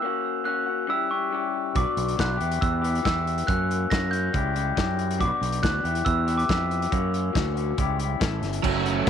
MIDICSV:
0, 0, Header, 1, 7, 480
1, 0, Start_track
1, 0, Tempo, 431034
1, 20, Time_signature, 4, 2, 24, 8
1, 10133, End_track
2, 0, Start_track
2, 0, Title_t, "Glockenspiel"
2, 0, Program_c, 0, 9
2, 0, Note_on_c, 0, 88, 89
2, 506, Note_on_c, 0, 90, 80
2, 535, Note_off_c, 0, 88, 0
2, 952, Note_off_c, 0, 90, 0
2, 1001, Note_on_c, 0, 88, 81
2, 1234, Note_on_c, 0, 85, 68
2, 1240, Note_off_c, 0, 88, 0
2, 1677, Note_off_c, 0, 85, 0
2, 1963, Note_on_c, 0, 86, 77
2, 2403, Note_off_c, 0, 86, 0
2, 2451, Note_on_c, 0, 90, 76
2, 2909, Note_on_c, 0, 88, 73
2, 2934, Note_off_c, 0, 90, 0
2, 3386, Note_off_c, 0, 88, 0
2, 3399, Note_on_c, 0, 88, 86
2, 3867, Note_on_c, 0, 90, 84
2, 3889, Note_off_c, 0, 88, 0
2, 4347, Note_on_c, 0, 94, 90
2, 4363, Note_off_c, 0, 90, 0
2, 4576, Note_on_c, 0, 91, 87
2, 4596, Note_off_c, 0, 94, 0
2, 5029, Note_off_c, 0, 91, 0
2, 5798, Note_on_c, 0, 86, 77
2, 6268, Note_on_c, 0, 90, 92
2, 6287, Note_off_c, 0, 86, 0
2, 6736, Note_on_c, 0, 88, 94
2, 6762, Note_off_c, 0, 90, 0
2, 7099, Note_on_c, 0, 86, 81
2, 7112, Note_off_c, 0, 88, 0
2, 7227, Note_off_c, 0, 86, 0
2, 7233, Note_on_c, 0, 88, 82
2, 9101, Note_off_c, 0, 88, 0
2, 10133, End_track
3, 0, Start_track
3, 0, Title_t, "String machine"
3, 0, Program_c, 1, 50
3, 9603, Note_on_c, 1, 78, 64
3, 9604, Note_on_c, 1, 69, 72
3, 9609, Note_on_c, 1, 85, 85
3, 9612, Note_on_c, 1, 76, 67
3, 10133, Note_off_c, 1, 69, 0
3, 10133, Note_off_c, 1, 76, 0
3, 10133, Note_off_c, 1, 78, 0
3, 10133, Note_off_c, 1, 85, 0
3, 10133, End_track
4, 0, Start_track
4, 0, Title_t, "Clean electric guitar"
4, 0, Program_c, 2, 27
4, 22, Note_on_c, 2, 58, 97
4, 46, Note_on_c, 2, 61, 87
4, 62, Note_on_c, 2, 66, 94
4, 478, Note_off_c, 2, 58, 0
4, 492, Note_on_c, 2, 58, 87
4, 499, Note_off_c, 2, 61, 0
4, 512, Note_on_c, 2, 61, 91
4, 517, Note_off_c, 2, 66, 0
4, 530, Note_on_c, 2, 66, 96
4, 721, Note_off_c, 2, 66, 0
4, 734, Note_on_c, 2, 66, 73
4, 760, Note_off_c, 2, 61, 0
4, 774, Note_on_c, 2, 61, 55
4, 964, Note_off_c, 2, 58, 0
4, 965, Note_off_c, 2, 66, 0
4, 969, Note_off_c, 2, 61, 0
4, 972, Note_on_c, 2, 55, 85
4, 982, Note_on_c, 2, 61, 80
4, 994, Note_on_c, 2, 64, 97
4, 1012, Note_on_c, 2, 67, 81
4, 1206, Note_off_c, 2, 67, 0
4, 1219, Note_on_c, 2, 67, 64
4, 1223, Note_off_c, 2, 64, 0
4, 1236, Note_on_c, 2, 64, 57
4, 1239, Note_off_c, 2, 61, 0
4, 1253, Note_on_c, 2, 61, 45
4, 1442, Note_off_c, 2, 55, 0
4, 1455, Note_on_c, 2, 55, 65
4, 1461, Note_off_c, 2, 61, 0
4, 1463, Note_off_c, 2, 64, 0
4, 1475, Note_on_c, 2, 61, 77
4, 1477, Note_on_c, 2, 64, 69
4, 1482, Note_off_c, 2, 67, 0
4, 1496, Note_on_c, 2, 67, 80
4, 1927, Note_off_c, 2, 55, 0
4, 1937, Note_off_c, 2, 61, 0
4, 1938, Note_off_c, 2, 64, 0
4, 1947, Note_off_c, 2, 67, 0
4, 1948, Note_on_c, 2, 54, 74
4, 1964, Note_on_c, 2, 59, 83
4, 1976, Note_on_c, 2, 62, 100
4, 1984, Note_on_c, 2, 66, 102
4, 2400, Note_off_c, 2, 54, 0
4, 2414, Note_on_c, 2, 54, 85
4, 2416, Note_off_c, 2, 59, 0
4, 2429, Note_on_c, 2, 59, 83
4, 2430, Note_off_c, 2, 62, 0
4, 2440, Note_off_c, 2, 66, 0
4, 2443, Note_on_c, 2, 62, 93
4, 2453, Note_on_c, 2, 66, 96
4, 2637, Note_off_c, 2, 66, 0
4, 2641, Note_on_c, 2, 67, 81
4, 2646, Note_off_c, 2, 54, 0
4, 2652, Note_off_c, 2, 62, 0
4, 2654, Note_off_c, 2, 59, 0
4, 2657, Note_on_c, 2, 64, 80
4, 2673, Note_on_c, 2, 59, 65
4, 2685, Note_on_c, 2, 52, 69
4, 3125, Note_off_c, 2, 67, 0
4, 3138, Note_on_c, 2, 67, 67
4, 3144, Note_off_c, 2, 64, 0
4, 3157, Note_on_c, 2, 64, 59
4, 3161, Note_off_c, 2, 59, 0
4, 3174, Note_on_c, 2, 59, 52
4, 3352, Note_off_c, 2, 52, 0
4, 3366, Note_on_c, 2, 52, 79
4, 3367, Note_off_c, 2, 59, 0
4, 3381, Note_on_c, 2, 59, 67
4, 3385, Note_off_c, 2, 64, 0
4, 3394, Note_off_c, 2, 67, 0
4, 3399, Note_on_c, 2, 64, 79
4, 3407, Note_on_c, 2, 67, 74
4, 3843, Note_off_c, 2, 52, 0
4, 3851, Note_off_c, 2, 59, 0
4, 3860, Note_off_c, 2, 64, 0
4, 3860, Note_on_c, 2, 58, 80
4, 3864, Note_off_c, 2, 67, 0
4, 3879, Note_on_c, 2, 61, 92
4, 3895, Note_on_c, 2, 66, 80
4, 4337, Note_off_c, 2, 58, 0
4, 4351, Note_on_c, 2, 58, 84
4, 4357, Note_off_c, 2, 61, 0
4, 4371, Note_on_c, 2, 61, 88
4, 4376, Note_off_c, 2, 66, 0
4, 4389, Note_on_c, 2, 66, 100
4, 4556, Note_off_c, 2, 66, 0
4, 4570, Note_on_c, 2, 66, 61
4, 4592, Note_off_c, 2, 61, 0
4, 4606, Note_on_c, 2, 61, 57
4, 4805, Note_off_c, 2, 66, 0
4, 4816, Note_off_c, 2, 58, 0
4, 4819, Note_on_c, 2, 55, 89
4, 4823, Note_off_c, 2, 61, 0
4, 4836, Note_on_c, 2, 61, 85
4, 4844, Note_on_c, 2, 64, 90
4, 4856, Note_on_c, 2, 67, 90
4, 5037, Note_off_c, 2, 67, 0
4, 5051, Note_on_c, 2, 67, 69
4, 5062, Note_off_c, 2, 64, 0
4, 5075, Note_off_c, 2, 61, 0
4, 5076, Note_on_c, 2, 64, 62
4, 5088, Note_on_c, 2, 61, 55
4, 5282, Note_off_c, 2, 55, 0
4, 5293, Note_off_c, 2, 61, 0
4, 5295, Note_on_c, 2, 55, 61
4, 5304, Note_off_c, 2, 64, 0
4, 5306, Note_on_c, 2, 61, 68
4, 5318, Note_on_c, 2, 64, 65
4, 5321, Note_off_c, 2, 67, 0
4, 5334, Note_on_c, 2, 67, 80
4, 5763, Note_off_c, 2, 55, 0
4, 5767, Note_on_c, 2, 54, 91
4, 5773, Note_off_c, 2, 61, 0
4, 5779, Note_off_c, 2, 64, 0
4, 5782, Note_on_c, 2, 59, 83
4, 5787, Note_off_c, 2, 67, 0
4, 5792, Note_on_c, 2, 62, 86
4, 5807, Note_on_c, 2, 66, 97
4, 6246, Note_off_c, 2, 54, 0
4, 6255, Note_off_c, 2, 59, 0
4, 6260, Note_on_c, 2, 54, 78
4, 6268, Note_off_c, 2, 62, 0
4, 6268, Note_on_c, 2, 59, 81
4, 6281, Note_off_c, 2, 66, 0
4, 6281, Note_on_c, 2, 62, 89
4, 6295, Note_on_c, 2, 66, 105
4, 6490, Note_off_c, 2, 54, 0
4, 6494, Note_off_c, 2, 59, 0
4, 6498, Note_off_c, 2, 66, 0
4, 6500, Note_off_c, 2, 62, 0
4, 6503, Note_on_c, 2, 67, 73
4, 6520, Note_on_c, 2, 64, 83
4, 6533, Note_on_c, 2, 59, 81
4, 6544, Note_on_c, 2, 52, 69
4, 6967, Note_off_c, 2, 67, 0
4, 6980, Note_on_c, 2, 67, 66
4, 6989, Note_off_c, 2, 64, 0
4, 7003, Note_off_c, 2, 59, 0
4, 7003, Note_on_c, 2, 64, 54
4, 7017, Note_on_c, 2, 59, 56
4, 7207, Note_off_c, 2, 52, 0
4, 7221, Note_on_c, 2, 52, 67
4, 7222, Note_off_c, 2, 59, 0
4, 7236, Note_off_c, 2, 64, 0
4, 7236, Note_on_c, 2, 59, 73
4, 7244, Note_off_c, 2, 67, 0
4, 7249, Note_on_c, 2, 64, 75
4, 7257, Note_on_c, 2, 67, 77
4, 7688, Note_off_c, 2, 52, 0
4, 7692, Note_on_c, 2, 54, 83
4, 7696, Note_off_c, 2, 59, 0
4, 7703, Note_off_c, 2, 64, 0
4, 7706, Note_on_c, 2, 58, 98
4, 7707, Note_off_c, 2, 67, 0
4, 7716, Note_on_c, 2, 61, 81
4, 7731, Note_on_c, 2, 66, 95
4, 8149, Note_off_c, 2, 54, 0
4, 8162, Note_on_c, 2, 54, 87
4, 8166, Note_off_c, 2, 58, 0
4, 8175, Note_off_c, 2, 61, 0
4, 8180, Note_on_c, 2, 58, 83
4, 8188, Note_off_c, 2, 66, 0
4, 8189, Note_on_c, 2, 61, 88
4, 8201, Note_on_c, 2, 66, 88
4, 8395, Note_off_c, 2, 66, 0
4, 8409, Note_on_c, 2, 66, 69
4, 8419, Note_off_c, 2, 61, 0
4, 8427, Note_off_c, 2, 58, 0
4, 8432, Note_on_c, 2, 61, 61
4, 8440, Note_on_c, 2, 58, 55
4, 8638, Note_off_c, 2, 54, 0
4, 8642, Note_off_c, 2, 66, 0
4, 8654, Note_off_c, 2, 61, 0
4, 8658, Note_off_c, 2, 58, 0
4, 8658, Note_on_c, 2, 55, 81
4, 8671, Note_on_c, 2, 61, 86
4, 8683, Note_on_c, 2, 64, 81
4, 8693, Note_on_c, 2, 67, 90
4, 8878, Note_off_c, 2, 67, 0
4, 8892, Note_on_c, 2, 67, 65
4, 8907, Note_off_c, 2, 64, 0
4, 8920, Note_off_c, 2, 61, 0
4, 8921, Note_on_c, 2, 64, 62
4, 8933, Note_on_c, 2, 61, 53
4, 9116, Note_off_c, 2, 61, 0
4, 9123, Note_off_c, 2, 67, 0
4, 9126, Note_off_c, 2, 55, 0
4, 9129, Note_on_c, 2, 61, 77
4, 9133, Note_off_c, 2, 64, 0
4, 9147, Note_on_c, 2, 64, 95
4, 9169, Note_on_c, 2, 69, 96
4, 9600, Note_off_c, 2, 61, 0
4, 9609, Note_off_c, 2, 64, 0
4, 9620, Note_off_c, 2, 69, 0
4, 9627, Note_on_c, 2, 61, 64
4, 9840, Note_off_c, 2, 61, 0
4, 9853, Note_on_c, 2, 61, 59
4, 10093, Note_on_c, 2, 64, 65
4, 10133, Note_off_c, 2, 61, 0
4, 10133, Note_off_c, 2, 64, 0
4, 10133, End_track
5, 0, Start_track
5, 0, Title_t, "Overdriven electric guitar"
5, 0, Program_c, 3, 29
5, 9608, Note_on_c, 3, 54, 86
5, 9620, Note_on_c, 3, 57, 87
5, 9633, Note_on_c, 3, 61, 84
5, 9648, Note_on_c, 3, 66, 94
5, 10133, Note_off_c, 3, 54, 0
5, 10133, Note_off_c, 3, 57, 0
5, 10133, Note_off_c, 3, 61, 0
5, 10133, Note_off_c, 3, 66, 0
5, 10133, End_track
6, 0, Start_track
6, 0, Title_t, "Fingered electric bass"
6, 0, Program_c, 4, 33
6, 1951, Note_on_c, 4, 35, 80
6, 2052, Note_off_c, 4, 35, 0
6, 2193, Note_on_c, 4, 35, 82
6, 2396, Note_off_c, 4, 35, 0
6, 2443, Note_on_c, 4, 35, 81
6, 2641, Note_off_c, 4, 35, 0
6, 2678, Note_on_c, 4, 40, 69
6, 2879, Note_off_c, 4, 40, 0
6, 2918, Note_on_c, 4, 40, 89
6, 3324, Note_off_c, 4, 40, 0
6, 3404, Note_on_c, 4, 40, 75
6, 3808, Note_off_c, 4, 40, 0
6, 3876, Note_on_c, 4, 42, 82
6, 4283, Note_off_c, 4, 42, 0
6, 4362, Note_on_c, 4, 42, 81
6, 4767, Note_off_c, 4, 42, 0
6, 4840, Note_on_c, 4, 37, 98
6, 5246, Note_off_c, 4, 37, 0
6, 5319, Note_on_c, 4, 42, 81
6, 5800, Note_on_c, 4, 35, 89
6, 5817, Note_off_c, 4, 42, 0
6, 5898, Note_off_c, 4, 35, 0
6, 6029, Note_on_c, 4, 35, 89
6, 6234, Note_off_c, 4, 35, 0
6, 6276, Note_on_c, 4, 38, 85
6, 6478, Note_off_c, 4, 38, 0
6, 6503, Note_on_c, 4, 40, 73
6, 6710, Note_off_c, 4, 40, 0
6, 6750, Note_on_c, 4, 40, 86
6, 7159, Note_off_c, 4, 40, 0
6, 7231, Note_on_c, 4, 41, 77
6, 7639, Note_off_c, 4, 41, 0
6, 7709, Note_on_c, 4, 42, 80
6, 8117, Note_off_c, 4, 42, 0
6, 8187, Note_on_c, 4, 38, 78
6, 8595, Note_off_c, 4, 38, 0
6, 8666, Note_on_c, 4, 37, 85
6, 9075, Note_off_c, 4, 37, 0
6, 9141, Note_on_c, 4, 33, 71
6, 9357, Note_off_c, 4, 33, 0
6, 9372, Note_on_c, 4, 31, 74
6, 9592, Note_off_c, 4, 31, 0
6, 9624, Note_on_c, 4, 30, 82
6, 10032, Note_off_c, 4, 30, 0
6, 10099, Note_on_c, 4, 30, 92
6, 10133, Note_off_c, 4, 30, 0
6, 10133, End_track
7, 0, Start_track
7, 0, Title_t, "Drums"
7, 1953, Note_on_c, 9, 42, 56
7, 1956, Note_on_c, 9, 36, 97
7, 2065, Note_off_c, 9, 42, 0
7, 2067, Note_off_c, 9, 36, 0
7, 2197, Note_on_c, 9, 42, 52
7, 2308, Note_off_c, 9, 42, 0
7, 2321, Note_on_c, 9, 42, 55
7, 2432, Note_off_c, 9, 42, 0
7, 2439, Note_on_c, 9, 36, 95
7, 2439, Note_on_c, 9, 42, 59
7, 2448, Note_on_c, 9, 38, 99
7, 2550, Note_off_c, 9, 42, 0
7, 2551, Note_off_c, 9, 36, 0
7, 2559, Note_off_c, 9, 38, 0
7, 2679, Note_on_c, 9, 42, 49
7, 2791, Note_off_c, 9, 42, 0
7, 2800, Note_on_c, 9, 42, 58
7, 2912, Note_off_c, 9, 42, 0
7, 2919, Note_on_c, 9, 36, 97
7, 2923, Note_on_c, 9, 42, 50
7, 3031, Note_off_c, 9, 36, 0
7, 3034, Note_off_c, 9, 42, 0
7, 3167, Note_on_c, 9, 42, 55
7, 3278, Note_off_c, 9, 42, 0
7, 3287, Note_on_c, 9, 42, 46
7, 3398, Note_off_c, 9, 42, 0
7, 3400, Note_on_c, 9, 36, 100
7, 3402, Note_on_c, 9, 42, 53
7, 3411, Note_on_c, 9, 38, 93
7, 3511, Note_off_c, 9, 36, 0
7, 3513, Note_off_c, 9, 42, 0
7, 3522, Note_off_c, 9, 38, 0
7, 3645, Note_on_c, 9, 42, 53
7, 3757, Note_off_c, 9, 42, 0
7, 3762, Note_on_c, 9, 42, 57
7, 3873, Note_off_c, 9, 42, 0
7, 3879, Note_on_c, 9, 36, 108
7, 3883, Note_on_c, 9, 42, 56
7, 3991, Note_off_c, 9, 36, 0
7, 3994, Note_off_c, 9, 42, 0
7, 4130, Note_on_c, 9, 42, 55
7, 4241, Note_off_c, 9, 42, 0
7, 4359, Note_on_c, 9, 36, 98
7, 4362, Note_on_c, 9, 42, 57
7, 4371, Note_on_c, 9, 38, 106
7, 4471, Note_off_c, 9, 36, 0
7, 4474, Note_off_c, 9, 42, 0
7, 4483, Note_off_c, 9, 38, 0
7, 4600, Note_on_c, 9, 42, 52
7, 4711, Note_off_c, 9, 42, 0
7, 4833, Note_on_c, 9, 42, 59
7, 4834, Note_on_c, 9, 36, 104
7, 4945, Note_off_c, 9, 42, 0
7, 4946, Note_off_c, 9, 36, 0
7, 5076, Note_on_c, 9, 42, 67
7, 5187, Note_off_c, 9, 42, 0
7, 5315, Note_on_c, 9, 36, 96
7, 5315, Note_on_c, 9, 42, 62
7, 5324, Note_on_c, 9, 38, 106
7, 5426, Note_off_c, 9, 36, 0
7, 5426, Note_off_c, 9, 42, 0
7, 5435, Note_off_c, 9, 38, 0
7, 5556, Note_on_c, 9, 42, 52
7, 5667, Note_off_c, 9, 42, 0
7, 5686, Note_on_c, 9, 42, 57
7, 5797, Note_off_c, 9, 42, 0
7, 5797, Note_on_c, 9, 36, 99
7, 5803, Note_on_c, 9, 42, 53
7, 5908, Note_off_c, 9, 36, 0
7, 5914, Note_off_c, 9, 42, 0
7, 6044, Note_on_c, 9, 42, 59
7, 6151, Note_off_c, 9, 42, 0
7, 6151, Note_on_c, 9, 42, 62
7, 6263, Note_off_c, 9, 42, 0
7, 6273, Note_on_c, 9, 36, 110
7, 6279, Note_on_c, 9, 42, 57
7, 6288, Note_on_c, 9, 38, 110
7, 6384, Note_off_c, 9, 36, 0
7, 6390, Note_off_c, 9, 42, 0
7, 6399, Note_off_c, 9, 38, 0
7, 6515, Note_on_c, 9, 42, 53
7, 6626, Note_off_c, 9, 42, 0
7, 6628, Note_on_c, 9, 42, 60
7, 6739, Note_off_c, 9, 42, 0
7, 6748, Note_on_c, 9, 36, 103
7, 6749, Note_on_c, 9, 42, 52
7, 6860, Note_off_c, 9, 36, 0
7, 6860, Note_off_c, 9, 42, 0
7, 6991, Note_on_c, 9, 42, 59
7, 7102, Note_off_c, 9, 42, 0
7, 7117, Note_on_c, 9, 42, 48
7, 7228, Note_off_c, 9, 42, 0
7, 7230, Note_on_c, 9, 36, 99
7, 7232, Note_on_c, 9, 42, 51
7, 7241, Note_on_c, 9, 38, 100
7, 7342, Note_off_c, 9, 36, 0
7, 7343, Note_off_c, 9, 42, 0
7, 7352, Note_off_c, 9, 38, 0
7, 7474, Note_on_c, 9, 42, 50
7, 7585, Note_off_c, 9, 42, 0
7, 7598, Note_on_c, 9, 42, 61
7, 7709, Note_off_c, 9, 42, 0
7, 7709, Note_on_c, 9, 36, 94
7, 7713, Note_on_c, 9, 42, 50
7, 7820, Note_off_c, 9, 36, 0
7, 7824, Note_off_c, 9, 42, 0
7, 7951, Note_on_c, 9, 42, 51
7, 8062, Note_off_c, 9, 42, 0
7, 8189, Note_on_c, 9, 36, 102
7, 8191, Note_on_c, 9, 42, 56
7, 8200, Note_on_c, 9, 38, 97
7, 8300, Note_off_c, 9, 36, 0
7, 8303, Note_off_c, 9, 42, 0
7, 8312, Note_off_c, 9, 38, 0
7, 8429, Note_on_c, 9, 42, 50
7, 8541, Note_off_c, 9, 42, 0
7, 8663, Note_on_c, 9, 42, 59
7, 8666, Note_on_c, 9, 36, 96
7, 8774, Note_off_c, 9, 42, 0
7, 8777, Note_off_c, 9, 36, 0
7, 8904, Note_on_c, 9, 42, 64
7, 9015, Note_off_c, 9, 42, 0
7, 9142, Note_on_c, 9, 42, 57
7, 9144, Note_on_c, 9, 36, 108
7, 9151, Note_on_c, 9, 38, 99
7, 9254, Note_off_c, 9, 42, 0
7, 9255, Note_off_c, 9, 36, 0
7, 9262, Note_off_c, 9, 38, 0
7, 9384, Note_on_c, 9, 42, 50
7, 9393, Note_on_c, 9, 38, 28
7, 9495, Note_off_c, 9, 42, 0
7, 9497, Note_on_c, 9, 42, 65
7, 9504, Note_off_c, 9, 38, 0
7, 9609, Note_off_c, 9, 42, 0
7, 9621, Note_on_c, 9, 36, 95
7, 9621, Note_on_c, 9, 49, 100
7, 9732, Note_off_c, 9, 49, 0
7, 9733, Note_off_c, 9, 36, 0
7, 9864, Note_on_c, 9, 42, 55
7, 9976, Note_off_c, 9, 42, 0
7, 10097, Note_on_c, 9, 42, 63
7, 10133, Note_off_c, 9, 42, 0
7, 10133, End_track
0, 0, End_of_file